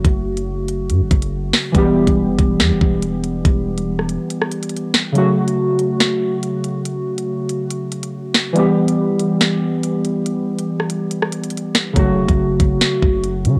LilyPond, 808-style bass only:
\new Staff \with { instrumentName = "808-style bass" } { \clef bass \time 4/4 \key fis \phrygian \tempo 4 = 141 fis,,2 fis,16 fis,,16 fis,,4 r8 | e,,8. e,,8 fis,,16 e,,8 e,16 e,,16 e,,4. | e,,4.~ e,,16 r2 r16 | r1 |
r1 | r1 | r1 | fis,,8 e,,16 fis,,8. fis,,8 r8 fis,,4 cis16 fis,,16 | }